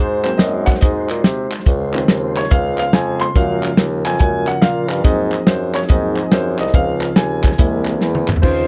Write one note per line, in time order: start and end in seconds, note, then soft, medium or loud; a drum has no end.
0.00 0.34 G#2 loud
0.00 3.31 G#3 medium
0.00 1.65 D#4 medium
0.00 1.65 F#4 medium
0.00 0.22 C5 medium
0.00 3.32 C5 medium
0.23 1.62 F#3 medium
0.23 1.63 A#3 soft
0.23 1.63 C4 medium
0.23 0.40 C5 medium
0.23 clap medium
0.23 closed hi-hat soft
0.38 0.76 F#2 medium
0.38 0.67 D#5 medium
0.38 snare loud
0.38 closed hi-hat medium
0.66 0.71 F#5 loud
0.66 kick medium
0.66 clap medium
0.66 closed hi-hat medium
0.75 snare soft
0.81 1.06 G#2 medium
0.81 1.21 D#5 medium
0.81 kick loud
0.81 closed hi-hat loud
1.10 1.22 A#2 medium
1.10 clap medium
1.10 closed hi-hat medium
1.24 1.48 C3 medium
1.24 snare loud
1.24 closed hi-hat medium
1.52 clap medium
1.52 closed hi-hat medium
1.60 snare soft
1.66 2.03 C#2 medium
1.66 5.01 C#3 medium
1.66 5.01 F4 medium
1.66 kick loud
1.66 closed hi-hat medium
1.94 3.32 D#3 medium
1.94 3.32 F3 medium
1.94 3.32 C4 medium
1.94 clap medium
1.94 closed hi-hat soft
2.08 2.45 D#2 medium
2.08 snare loud
2.08 closed hi-hat medium
2.36 2.52 C#5 medium
2.36 clap medium
2.36 closed hi-hat medium
2.44 snare soft
2.51 2.88 C#2 loud
2.51 2.77 F5 loud
2.51 kick loud
2.51 closed hi-hat loud
2.78 2.94 F5 loud
2.78 clap medium
2.78 closed hi-hat medium
2.93 3.30 F2 medium
2.93 3.22 G#5 medium
2.93 snare loud
2.93 closed hi-hat medium
3.21 3.36 C6 loud
3.21 clap medium
3.21 closed hi-hat medium
3.34 3.72 F#2 loud
3.34 6.69 F3 medium
3.34 4.02 F3 medium
3.34 4.02 G#3 medium
3.34 4.03 A#3 medium
3.34 5.02 A#4 medium
3.34 3.76 F5 loud
3.34 kick loud
3.34 closed hi-hat medium
3.63 clap medium
3.63 closed hi-hat soft
3.77 4.02 D#2 loud
3.77 snare loud
3.77 closed hi-hat medium
4.05 4.18 F2 medium
4.05 4.18 G#5 loud
4.05 clap medium
4.05 closed hi-hat medium
4.13 snare soft
4.19 4.57 F#2 medium
4.19 4.45 F3 soft
4.19 4.45 G#3 soft
4.19 4.45 A#3 medium
4.19 4.46 G#5 loud
4.19 kick loud
4.19 closed hi-hat loud
4.47 4.63 F#5 medium
4.47 clap medium
4.47 closed hi-hat medium
4.62 4.92 A#2 medium
4.62 5.01 F5 medium
4.62 snare loud
4.62 closed hi-hat medium
4.90 5.03 G2 medium
4.90 clap medium
4.90 closed hi-hat medium
5.03 5.41 G#2 loud
5.03 5.36 F#3 medium
5.03 5.36 A#3 soft
5.03 7.55 C4 medium
5.03 5.36 C4 medium
5.03 6.71 D#4 medium
5.03 8.38 G#4 medium
5.03 5.48 D#5 loud
5.03 kick loud
5.03 closed hi-hat medium
5.32 clap medium
5.32 closed hi-hat medium
5.47 5.83 F#2 medium
5.47 5.75 C5 medium
5.47 snare loud
5.47 closed hi-hat medium
5.75 5.80 C#5 medium
5.75 clap medium
5.75 closed hi-hat medium
5.82 snare soft
5.88 6.26 G#2 loud
5.88 6.14 F#3 soft
5.88 6.14 A#3 soft
5.88 6.14 C4 medium
5.88 6.33 D#5 medium
5.88 kick loud
5.88 closed hi-hat loud
6.17 clap medium
6.17 closed hi-hat medium
6.32 6.55 F#2 loud
6.32 6.58 C5 medium
6.32 snare loud
6.32 closed hi-hat medium
6.59 6.72 C2 medium
6.59 6.75 D#5 medium
6.59 clap medium
6.59 closed hi-hat medium
6.67 snare soft
6.73 7.10 C#2 loud
6.73 7.57 C#3 medium
6.73 7.57 F3 medium
6.73 7.54 F3 medium
6.73 7.54 C4 medium
6.73 7.55 D#4 medium
6.73 7.14 F5 medium
6.73 kick loud
6.73 closed hi-hat medium
7.01 clap loud
7.01 closed hi-hat soft
7.16 7.52 D#2 medium
7.16 8.24 G#5 medium
7.16 snare loud
7.16 closed hi-hat medium
7.44 kick medium
7.44 clap medium
7.44 closed hi-hat medium
7.52 snare soft
7.58 8.03 C2 loud
7.58 8.42 E3 medium
7.58 8.39 G#3 medium
7.58 8.39 A#3 medium
7.58 8.42 A#3 medium
7.58 8.42 C4 medium
7.58 8.39 E4 medium
7.58 kick loud
7.58 closed hi-hat loud
7.85 clap medium
7.85 closed hi-hat medium
8.01 8.29 E2 loud
8.01 snare medium
8.15 high tom medium
8.28 clap medium
8.28 mid tom medium
8.36 floor tom medium
8.42 8.67 C#2 medium
8.42 8.67 C#3 medium
8.42 8.67 D#3 medium
8.42 8.67 C4 medium
8.42 8.67 C#4 medium
8.42 8.67 D#4 medium
8.42 8.67 F4 medium
8.42 8.67 C5 loud
8.42 8.67 C5 medium
8.42 kick loud
8.42 crash medium